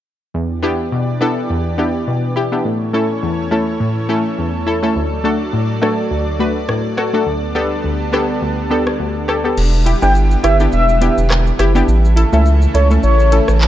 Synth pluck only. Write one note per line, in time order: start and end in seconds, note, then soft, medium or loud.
0.34 0.79 E2 medium
0.63 0.76 B3 medium
0.63 0.76 D4 medium
0.63 0.76 E4 medium
0.63 0.76 G4 loud
0.92 1.36 B2 medium
1.21 1.34 B3 medium
1.21 1.34 D4 medium
1.21 1.34 E4 medium
1.21 1.34 A4 loud
1.50 1.94 E2 medium
1.78 1.91 B3 medium
1.78 1.91 D4 medium
1.78 1.92 E4 medium
1.78 1.92 G4 medium
2.08 2.52 B2 medium
2.36 2.43 E4 medium
2.36 2.43 G4 loud
2.52 2.62 B3 medium
2.52 2.62 D4 medium
2.52 2.63 E4 medium
2.52 2.63 G4 medium
2.65 3.09 A2 medium
2.93 3.07 A3 medium
2.93 3.07 C#4 medium
2.93 3.07 E4 medium
2.93 3.07 A4 loud
3.23 3.67 E2 medium
3.51 3.64 A3 medium
3.51 3.64 C#4 medium
3.51 3.65 E4 medium
3.51 3.65 A4 medium
3.80 4.25 A2 medium
4.09 4.22 A3 medium
4.09 4.22 C#4 medium
4.09 4.22 E4 medium
4.09 4.22 A4 medium
4.38 4.83 E2 medium
4.67 4.73 E4 medium
4.67 4.74 A4 medium
4.83 4.93 A3 medium
4.83 4.93 C#4 medium
4.83 4.93 E4 medium
4.83 4.94 A4 medium
4.96 5.40 D2 medium
5.24 5.37 A3 medium
5.24 5.37 D4 medium
5.24 5.38 F#4 medium
5.24 5.38 A4 loud
5.53 5.98 A2 medium
5.82 5.95 A3 medium
5.82 5.95 D4 medium
5.82 5.95 F#4 medium
5.82 5.95 A4 loud
6.11 6.55 D2 medium
6.39 6.53 A3 medium
6.39 6.53 D4 medium
6.39 6.53 F#4 medium
6.39 6.53 B4 medium
6.69 7.13 A2 medium
6.97 7.04 F#4 medium
6.97 7.05 A4 medium
7.13 7.24 A3 medium
7.13 7.24 D4 medium
7.13 7.24 F#4 medium
7.13 7.24 A4 medium
7.26 7.71 D2 medium
7.55 7.68 B3 medium
7.55 7.68 D4 medium
7.55 7.68 G4 medium
7.55 7.69 A4 loud
7.84 8.28 D2 medium
8.12 8.26 B3 medium
8.12 8.26 D4 medium
8.12 8.26 G4 medium
8.12 8.26 A4 loud
8.42 8.86 D2 medium
8.70 8.84 B3 medium
8.70 8.84 D4 medium
8.70 8.84 G4 medium
8.70 8.84 A4 medium
8.99 9.44 D2 medium
9.28 9.35 G4 medium
9.28 9.35 A4 medium
9.44 9.55 B3 medium
9.44 9.55 D4 medium
9.44 9.55 G4 medium
9.44 9.55 A4 medium
9.86 9.92 E4 medium
9.86 9.93 G4 medium
10.02 10.12 B3 medium
10.02 10.12 D4 medium
10.02 10.13 E4 medium
10.02 10.13 G4 medium
10.44 10.50 E4 medium
10.44 10.51 G4 medium
10.60 10.70 B3 medium
10.60 10.70 D4 medium
10.60 10.70 E4 medium
10.60 10.71 G4 medium
11.01 11.14 B3 medium
11.01 11.15 D4 medium
11.01 11.15 E4 medium
11.01 11.15 G4 medium
11.59 11.66 E4 medium
11.59 11.66 G4 loud
11.75 11.85 B3 medium
11.75 11.85 D4 medium
11.75 11.86 E4 medium
11.75 11.86 G4 loud
12.16 12.23 E4 medium
12.16 12.24 A4 medium
12.33 12.43 A3 medium
12.33 12.43 C#4 medium
12.33 12.43 E4 medium
12.33 12.44 A4 medium
12.74 12.81 E4 medium
12.74 12.81 A4 medium
12.90 13.01 A3 medium
12.90 13.01 C#4 medium
12.90 13.01 E4 medium
12.90 13.01 A4 medium
13.32 13.45 A3 medium
13.32 13.45 C#4 medium
13.32 13.45 E4 medium
13.32 13.46 A4 medium